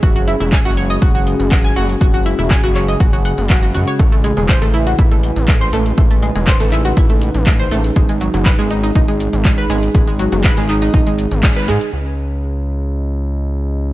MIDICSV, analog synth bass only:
0, 0, Header, 1, 2, 480
1, 0, Start_track
1, 0, Key_signature, 4, "minor"
1, 0, Tempo, 495868
1, 28, Time_signature, 4, 2, 24, 8
1, 13486, End_track
2, 0, Start_track
2, 0, Title_t, "Analog synth bass"
2, 0, Program_c, 0, 38
2, 28, Note_on_c, 0, 30, 102
2, 346, Note_off_c, 0, 30, 0
2, 392, Note_on_c, 0, 28, 102
2, 574, Note_off_c, 0, 28, 0
2, 632, Note_on_c, 0, 30, 89
2, 945, Note_off_c, 0, 30, 0
2, 987, Note_on_c, 0, 30, 99
2, 1306, Note_off_c, 0, 30, 0
2, 1352, Note_on_c, 0, 30, 100
2, 1665, Note_off_c, 0, 30, 0
2, 1708, Note_on_c, 0, 30, 101
2, 1894, Note_off_c, 0, 30, 0
2, 1947, Note_on_c, 0, 30, 103
2, 2266, Note_off_c, 0, 30, 0
2, 2312, Note_on_c, 0, 28, 104
2, 2494, Note_off_c, 0, 28, 0
2, 2551, Note_on_c, 0, 30, 96
2, 2865, Note_off_c, 0, 30, 0
2, 2907, Note_on_c, 0, 30, 103
2, 3226, Note_off_c, 0, 30, 0
2, 3272, Note_on_c, 0, 30, 96
2, 3628, Note_on_c, 0, 42, 85
2, 3642, Note_off_c, 0, 30, 0
2, 3724, Note_off_c, 0, 42, 0
2, 3867, Note_on_c, 0, 33, 105
2, 4186, Note_off_c, 0, 33, 0
2, 4232, Note_on_c, 0, 28, 101
2, 4415, Note_off_c, 0, 28, 0
2, 4473, Note_on_c, 0, 33, 96
2, 4785, Note_off_c, 0, 33, 0
2, 4828, Note_on_c, 0, 33, 97
2, 5146, Note_off_c, 0, 33, 0
2, 5193, Note_on_c, 0, 33, 98
2, 5505, Note_off_c, 0, 33, 0
2, 5548, Note_on_c, 0, 33, 97
2, 5734, Note_off_c, 0, 33, 0
2, 5787, Note_on_c, 0, 33, 104
2, 6106, Note_off_c, 0, 33, 0
2, 6152, Note_on_c, 0, 28, 104
2, 6335, Note_off_c, 0, 28, 0
2, 6393, Note_on_c, 0, 33, 91
2, 6705, Note_off_c, 0, 33, 0
2, 6747, Note_on_c, 0, 33, 103
2, 7066, Note_off_c, 0, 33, 0
2, 7113, Note_on_c, 0, 33, 99
2, 7425, Note_off_c, 0, 33, 0
2, 7468, Note_on_c, 0, 33, 95
2, 7655, Note_off_c, 0, 33, 0
2, 7707, Note_on_c, 0, 32, 99
2, 8026, Note_off_c, 0, 32, 0
2, 8073, Note_on_c, 0, 30, 108
2, 8255, Note_off_c, 0, 30, 0
2, 8314, Note_on_c, 0, 32, 86
2, 8626, Note_off_c, 0, 32, 0
2, 8668, Note_on_c, 0, 32, 97
2, 8986, Note_off_c, 0, 32, 0
2, 9035, Note_on_c, 0, 32, 93
2, 9346, Note_off_c, 0, 32, 0
2, 9389, Note_on_c, 0, 32, 101
2, 9575, Note_off_c, 0, 32, 0
2, 9628, Note_on_c, 0, 32, 103
2, 9946, Note_off_c, 0, 32, 0
2, 9993, Note_on_c, 0, 30, 99
2, 10175, Note_off_c, 0, 30, 0
2, 10233, Note_on_c, 0, 32, 89
2, 10546, Note_off_c, 0, 32, 0
2, 10588, Note_on_c, 0, 32, 104
2, 10906, Note_off_c, 0, 32, 0
2, 10954, Note_on_c, 0, 32, 99
2, 11308, Note_on_c, 0, 44, 89
2, 11323, Note_off_c, 0, 32, 0
2, 11404, Note_off_c, 0, 44, 0
2, 11549, Note_on_c, 0, 37, 85
2, 13486, Note_off_c, 0, 37, 0
2, 13486, End_track
0, 0, End_of_file